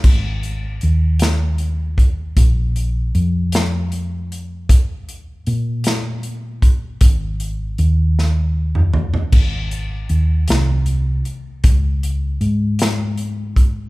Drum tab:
CC |x-----------|------------|------------|------------|
HH |--x-x-x-x-x-|x-x-x-x-x-x-|x-x-x-x-x-x-|x-x-x-------|
SD |------o-----|------o-----|------o-----|------o-----|
T2 |------------|------------|------------|---------o--|
FT |------------|------------|------------|----------oo|
BD |o---------o-|o-----------|o---------o-|o-----------|

CC |x-----------|------------|
HH |--x-x-x-x-x-|x-x-x-x-x-x-|
SD |------o-----|------o-----|
T2 |------------|------------|
FT |------------|------------|
BD |o-----------|o---------o-|